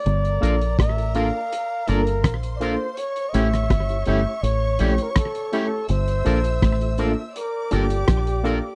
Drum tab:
HH |xxxxxxx-x-xxxxx-|xxxxxxx-x-xxxxx-|xxxxxxx-x-xxxxx-|
SD |----r-------r---|---rr-------r---|----r-------r---|
BD |----o-------o---|----o-------o---|----o-------o---|